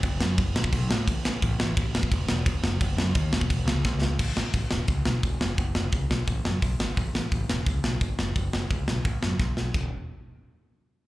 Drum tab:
CC |x---x---x---x---|x---x---x---x---|x---x---x-------|x---------------|
HH |----------------|----------------|----------------|----o---o---o---|
SD |--o---o---o---o-|--o---o---o---o-|--o---o---o-o-o-|--o---o---o---o-|
BD |o---o--oo---o---|o---o--oo---o---|o---o--oo---o---|o---o---o---o---|

CC |----------------|----------------|----------------|x---------------|
HH |o---o---o---o---|o---o---o---o---|o---o---o-------|----------------|
SD |--o---o---o---o-|--o---o---o---o-|--o---o---o-o-o-|----------------|
BD |o---o---o---o---|o---o---o---o---|o---o---o---o---|o---------------|